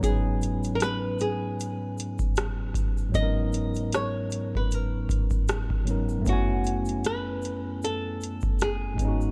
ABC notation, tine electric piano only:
X:1
M:4/4
L:1/8
Q:"Swing 16ths" 1/4=77
K:G#m
V:1 name="Tine electric piano"
[G,,F,B,CDB]8 | [G,,F,B,CDA]6- [G,,F,B,CDA] [G,,F,B,CDA] | [F,,=A,B,CEg]6- [F,,A,B,CEg] [G,,G,B,CDF] |]